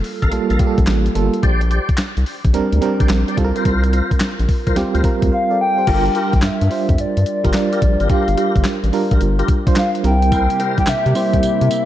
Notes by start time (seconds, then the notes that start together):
Already playing: G3 A#3 F4 A4
0.04 open hi-hat
0.22 A1 A4 A#4 F5, kick, closed hi-hat
0.31 A#1 G3 A#3 F4 A4, closed hi-hat
0.50 A#1 A4 A#4 F5, closed hi-hat
0.59 G3 A#3 F4 G4, kick, closed hi-hat
0.67 A4
0.78 A#1, kick, closed hi-hat
0.87 A1, snare, clap, closed hi-hat
1.06 closed hi-hat
1.15 G1 G3 A#3 F4 A4, closed hi-hat
1.34 closed hi-hat
1.43 A#1 G4 C5 D5, kick, closed hi-hat
1.61 closed hi-hat
1.70 G4 C5 D5, closed hi-hat
1.89 kick, closed hi-hat
1.97 snare, clap, closed hi-hat
2.17 C2, closed hi-hat
2.26 open hi-hat
2.45 A#1, kick, closed hi-hat
2.53 D2 G3 C4 D4 A#4, closed hi-hat
2.73 D2, closed hi-hat
2.81 G3 C4 D4 A#4, closed hi-hat
3.00 A#1 G4 C5 D5, kick, closed hi-hat
3.09 A#1, snare, clap, closed hi-hat
3.28 G4 C5 D5, closed hi-hat
3.37 C2 G3 C4 F4 A4, kick, closed hi-hat
3.44 A#4
3.56 F4 A#4 C5, closed hi-hat
3.65 C2 F4 A#4 C5, kick, closed hi-hat
3.84 closed hi-hat
3.93 F4 A#4 C5, closed hi-hat
4.11 kick, closed hi-hat
4.20 snare, clap, closed hi-hat
4.39 A#1, closed hi-hat
4.49 kick, open hi-hat
4.66 C2 F4 A#4 C5, kick, closed hi-hat
4.76 D2 G3 C4 F4 G4, snare, closed hi-hat
4.94 D2 F4 A#4 C5, closed hi-hat
5.04 G3 C4 F4 A#4, kick, closed hi-hat
5.22 D2, kick, closed hi-hat
5.32 C5 F5
5.50 A4 D5
5.61 G5
5.78 G4 C5
5.87 G1 G3 D4 F4 G4 A4 A#4, kick, closed hi-hat, crash
5.95 A#4
6.05 closed hi-hat
6.15 F4 G4 A#4, closed hi-hat
6.33 A#1 G5, kick, closed hi-hat
6.42 G2 E5, snare, clap, closed hi-hat
6.61 G2, closed hi-hat
6.70 G3 D4 F4 C5, open hi-hat
6.89 F2, kick, closed hi-hat
6.98 G2 D5, closed hi-hat
7.17 G2, closed hi-hat
7.26 closed hi-hat
7.44 G1 G3 D4 F4 G4 A#4, kick, closed hi-hat
7.53 D5, snare, clap, closed hi-hat
7.72 F4 G4 A#4, closed hi-hat
7.82 A#1, kick, closed hi-hat
8.00 G#1 F4 G4 A#4, closed hi-hat
8.09 G3 D4 F4 G4 A#4 F5, kick, closed hi-hat
8.28 G1, closed hi-hat
8.37 F4 G4 A#4, closed hi-hat
8.56 G1, kick, closed hi-hat
8.64 snare, clap, closed hi-hat
8.84 A1, closed hi-hat
8.93 G3 D4 F4 A#4, open hi-hat
9.11 A#1 F4 G4 A#4, kick, closed hi-hat
9.21 G1, closed hi-hat
9.39 F4 G4 A#4, closed hi-hat
9.48 kick, closed hi-hat
9.66 G3 D4 F4 C5, kick, closed hi-hat
9.76 F5, snare, clap, closed hi-hat
9.95 closed hi-hat
10.04 C2 G3 C4 D4 A#4 G5, closed hi-hat
10.11 E4
10.22 closed hi-hat
10.31 C3 G3 A#3 E4 G4 A#4 C5, kick, closed hi-hat, tambourine
10.50 closed hi-hat
10.59 E4 A#4 C5, closed hi-hat
10.78 C2 G5, kick, closed hi-hat
10.87 C3 E5, snare, clap, closed hi-hat, tambourine
11.06 C3, closed hi-hat
11.15 G3 C4 E4 C5 E5, open hi-hat, tambourine
11.33 C2, kick, closed hi-hat
11.43 C3, closed hi-hat, tambourine
11.61 C3, closed hi-hat
11.71 closed hi-hat, tambourine